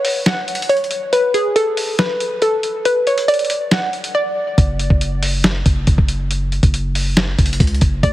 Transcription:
Already playing: C#5
0.05 open hi-hat
0.26 F#5, snare, closed hi-hat
0.48 closed hi-hat
0.55 closed hi-hat
0.62 closed hi-hat
0.69 C#5, closed hi-hat
0.77 closed hi-hat
0.84 closed hi-hat
0.91 closed hi-hat
1.13 B4, closed hi-hat
1.34 G#4, closed hi-hat
1.56 A4, closed hi-hat
1.77 open hi-hat
1.99 B4, snare, closed hi-hat
2.20 closed hi-hat
2.42 A4, closed hi-hat
2.63 closed hi-hat
2.85 B4, closed hi-hat
3.07 C#5, closed hi-hat
3.18 closed hi-hat
3.28 D5, closed hi-hat
3.34 closed hi-hat
3.39 closed hi-hat
3.45 closed hi-hat
3.50 closed hi-hat
3.71 F#5, snare, closed hi-hat
3.93 closed hi-hat
4.04 closed hi-hat
4.15 D5
4.58 F#1, kick, closed hi-hat
4.79 closed hi-hat
4.90 F#1, kick
5.01 closed hi-hat
5.23 open hi-hat
5.44 snare, closed hi-hat
5.66 F#1, kick, closed hi-hat
5.87 F#1, kick, closed hi-hat
5.98 kick
6.08 closed hi-hat
6.31 closed hi-hat
6.52 closed hi-hat
6.63 F#1, kick, closed hi-hat
6.74 closed hi-hat
6.95 open hi-hat
7.17 snare, closed hi-hat
7.39 F#1, kick, closed hi-hat
7.46 closed hi-hat
7.53 closed hi-hat
7.60 C#2, kick, closed hi-hat
7.67 closed hi-hat
7.75 closed hi-hat
7.81 F#1, kick, closed hi-hat
8.03 D2 D5, kick, closed hi-hat

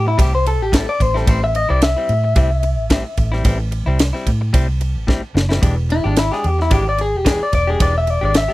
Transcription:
Already playing: A2
0.06 E4, muted clean electric guitar stroke
0.18 C2 A2 G3 C4 E4 G4, kick, ride
0.33 C5, muted clean electric guitar stroke
0.45 A4, muted clean electric guitar stroke, ride
0.60 A1 G4
0.72 A2 G3 C4 E4 A4, kick, snare, ride
0.87 D5, muted clean electric guitar stroke
1.00 A1 C5, muted clean electric guitar stroke, kick, ride
1.14 G3 C4 E4 A4, snare
1.27 A1 A2 G3 C4 E4 C5, kick, ride
1.42 E5, muted clean electric guitar stroke
1.54 D#5, muted clean electric guitar stroke, ride
1.69 C2 G3 C4 E4 D5
1.82 E5, snare, ride
1.97 G3 C4 E4
2.09 A2, ride
2.24 muted clean electric guitar stroke
2.36 C2 A2 G3 C4 E4, kick, ride
2.51 muted clean electric guitar stroke
2.63 muted clean electric guitar stroke, ride
2.78 A1
2.90 A2 G3 C4 E4, kick, snare, ride
3.05 muted clean electric guitar stroke
3.17 A1, muted clean electric guitar stroke, kick, ride
3.32 G3 C4 E4, snare
3.44 A1 A2 G3 C4 E4, kick, ride
3.59 muted clean electric guitar stroke
3.72 muted clean electric guitar stroke, ride
3.86 C2 G3 C4 E4
3.99 muted clean electric guitar stroke, snare, ride
4.13 G3 C4 E4, snare
4.26 A2, kick, ride
4.41 muted clean electric guitar stroke
4.53 C2 A2 G3 C4 E4, kick, ride
4.68 muted clean electric guitar stroke
4.81 muted clean electric guitar stroke, ride
4.96 A1
5.07 A2 G3 C4 E4, kick, snare
5.23 muted clean electric guitar stroke
5.35 F#1, muted clean electric guitar stroke, snare
5.49 G3 C4 E4, snare
5.61 E1 E3 G#3 D4 G4, kick, ride
5.77 muted clean electric guitar stroke
5.89 E4, muted clean electric guitar stroke, ride
6.04 G#1 G#3 D4 G4
6.16 E4, snare, ride
6.31 G#3 D4 G4 G#4, snare
6.44 E2 G4, ride
6.58 E4, muted clean electric guitar stroke, snare
6.70 G#1 E3 G#3 D4 G4, kick, ride
6.85 D5, muted clean electric guitar stroke
6.98 G#4, muted clean electric guitar stroke, ride
7.15 E1 G4
7.25 E3 G#3 D4 G4 G#4, kick, snare, ride
7.40 D5, muted clean electric guitar stroke
7.52 E1 D5, muted clean electric guitar stroke, kick, ride
7.67 G#3 D4 G4 G#4
7.79 E1 E3 G#3 D4 G4 D5, kick, ride
7.95 E5, muted clean electric guitar stroke
8.07 D5, muted clean electric guitar stroke, ride
8.21 G#1 G#3 D4 G4 D5
8.34 E5, muted clean electric guitar stroke, snare, ride
8.48 D4 G4

